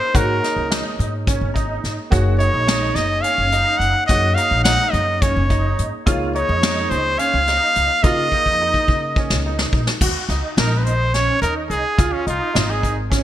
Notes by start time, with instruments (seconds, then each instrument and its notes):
Already playing: trumpet C5, tine electric piano C#5
0.14 upright bass G#2, tine electric piano A#3 D#4 G#4 C#5, grand piano F#4, trumpet A#4, kick, closed hi-hat
0.43 grand piano D#4, snare, closed hi-hat
0.56 upright bass C#2
0.71 grand piano D#4, snare, closed hi-hat
0.99 upright bass G#2, closed hi-hat
1.27 grand piano C#4, kick, closed hi-hat
1.41 upright bass G#1
1.54 grand piano D#4, tine electric piano A#5, kick, closed hi-hat
1.84 upright bass G#2, snare, closed hi-hat
2.11 upright bass F#1, tine electric piano A#3 D#4 G#4 C#5, grand piano F#4, kick, closed hi-hat
2.38 grand piano D#4, trumpet C#5, closed hi-hat
2.54 upright bass A#1
2.67 grand piano D#4, snare, closed hi-hat
2.95 upright bass F#1, trumpet D#5, snare, closed hi-hat
3.22 grand piano C#4, trumpet F5, closed hi-hat
3.38 upright bass F#1
3.52 grand piano D#4, closed hi-hat
3.78 upright bass F#1, trumpet F#5, closed hi-hat
4.06 upright bass F#2, tine electric piano A#3 D#4, grand piano F#4, trumpet D#5, kick, closed hi-hat
4.11 tine electric piano G#4 C#5
4.35 grand piano D#4, trumpet F5, closed hi-hat
4.51 upright bass A#1
4.63 grand piano D#4, trumpet F#5, snare, closed hi-hat
4.91 upright bass F#2, trumpet D#5, closed hi-hat
5.22 grand piano C#4, trumpet C#5, kick, closed hi-hat
5.37 upright bass F#1
5.50 grand piano D#4, kick, closed hi-hat
5.79 upright bass G#2, closed hi-hat
6.06 upright bass C#2, tine electric piano A#3 D#4 G#4 C#5, grand piano F4, kick, closed hi-hat
6.35 grand piano D#4, trumpet C#5, closed hi-hat
6.49 upright bass F2
6.63 grand piano D#4, snare, closed hi-hat
6.90 upright bass C#2, trumpet C5, closed hi-hat
7.19 grand piano C#4, trumpet F5, closed hi-hat
7.34 upright bass C#2
7.47 grand piano D#4, snare, closed hi-hat
7.75 upright bass C#2, closed hi-hat
8.03 upright bass C#3, tine electric piano A#3 D#4 G#4 A#4, grand piano F4, trumpet D#5, kick, closed hi-hat
8.32 grand piano D#4, kick
8.46 upright bass F2, kick
8.61 grand piano D#4
8.74 kick
8.88 upright bass C#3, kick
9.16 grand piano C#4, kick
9.30 upright bass C#2, snare
9.46 grand piano D#4
9.59 snare
9.73 upright bass A#1, kick
9.87 snare
10.01 upright bass D#2, grand piano F#4, kick, crash
10.29 upright bass C#2, grand piano D#4, snare, closed hi-hat
10.57 upright bass A#1, grand piano D#4, trumpet A#4, snare, closed hi-hat
10.77 trumpet B4
10.84 trumpet C5, closed hi-hat
11.14 grand piano C#4, trumpet C#5, snare, closed hi-hat
11.42 upright bass D#2, grand piano D#4, trumpet A#4, closed hi-hat
11.70 upright bass C2, trumpet G#4, closed hi-hat
11.98 upright bass C#2, grand piano F4, kick, closed hi-hat
12.13 trumpet C#4
12.26 upright bass C2, grand piano D#4, trumpet F4, closed hi-hat
12.54 upright bass G#1, grand piano D#4, snare, closed hi-hat
12.70 trumpet G#4
12.83 kick, closed hi-hat
13.10 grand piano C#4, kick, snare, closed hi-hat